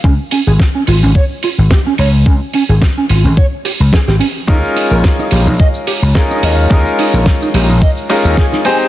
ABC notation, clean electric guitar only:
X:1
M:4/4
L:1/16
Q:"Swing 16ths" 1/4=108
K:Ebmix
V:1 name="Clean electric guitar"
D z D A z D F D d z F z G D d z | D z D A z D F D d z G z A G D z | E z E B z E G E e z G z A E e z | E z E B z E G E e z G z A E a z |]